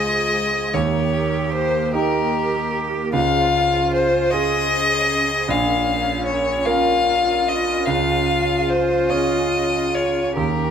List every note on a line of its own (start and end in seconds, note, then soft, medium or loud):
0.00 0.71 C#2 soft
0.00 0.76 G#3 medium
0.00 0.71 F4 soft
0.00 0.72 F4 medium
0.00 0.71 G#4 soft
0.00 0.77 G#4 medium
0.00 0.75 C5 medium
0.00 0.76 D#5 medium
0.74 3.10 D#2 medium
0.74 3.14 A#3 medium
0.74 3.14 G4 medium
0.74 1.94 G4 medium
0.74 3.14 A#4 medium
0.74 1.53 C#5 medium
1.54 1.93 C5 medium
1.94 3.10 D#4 soft
1.94 3.10 G4 soft
1.94 3.12 G4 medium
1.94 2.73 A#4 medium
3.13 5.45 C#2 medium
3.13 7.86 C#4 medium
3.13 4.34 F4 medium
3.13 5.49 G#4 medium
3.13 5.49 C5 medium
3.13 3.89 F5 medium
3.94 4.32 C5 medium
4.31 5.45 F4 soft
4.31 5.45 G#4 medium
4.31 5.51 G#4 medium
4.31 5.51 D#5 medium
5.48 7.83 A#1 medium
5.48 6.68 C#4 medium
5.48 7.88 F4 medium
5.48 7.89 A#4 medium
5.48 6.25 F5 medium
6.26 6.66 C#5 medium
6.65 7.83 C#4 soft
6.65 7.83 A#4 medium
6.65 7.50 F5 medium
6.69 10.34 F4 medium
7.48 7.88 D#5 medium
7.86 10.33 C#2 medium
7.86 10.71 C#4 medium
7.86 10.37 G#4 medium
7.86 8.71 F5 medium
8.69 9.11 C5 medium
9.10 10.33 C#4 soft
9.10 10.33 C#5 soft
9.10 9.96 D#5 medium
9.94 10.36 C#5 medium
10.37 10.71 D#2 soft
10.37 10.71 G4 medium
10.37 10.71 A#4 medium